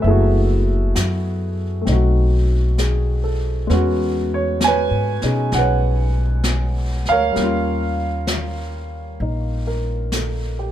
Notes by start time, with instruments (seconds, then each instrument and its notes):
0.00 upright bass F#1, grand piano A3 B3 E5, brush sweep
0.07 grand piano E4 F#4 G#4 A4
0.96 upright bass F#2, brush sweep, snare, hi-hat pedal
1.81 grand piano A3 C4
1.87 upright bass B1, grand piano D#4, brush sweep, snare
1.92 grand piano F#4
2.78 grand piano G#4, brush sweep, snare, hi-hat pedal
3.24 grand piano A4
3.67 upright bass E2, grand piano G#3 B3 C#4, brush sweep, snare
3.73 grand piano F#4
4.34 grand piano C#5
4.61 grand piano G#5, brush sweep, snare, hi-hat pedal
4.67 grand piano B4 C#5
4.91 upright bass G#2
5.22 upright bass B2, grand piano C#4 D#4 G#4, snare
5.52 upright bass B1, grand piano F#5, brush sweep, snare
5.58 grand piano B4 C#5
6.44 brush sweep, snare, hi-hat pedal
7.05 upright bass D2, grand piano F5, snare
7.11 grand piano A#4 C#5
7.32 grand piano G3
7.36 upright bass D#2, grand piano A#3 C#4, brush sweep, snare
7.43 grand piano F4
8.27 brush sweep, snare, hi-hat pedal
9.20 upright bass A#1, grand piano D#4, brush sweep
9.67 grand piano A#4
10.12 grand piano A4, brush sweep, snare, hi-hat pedal
10.59 grand piano G4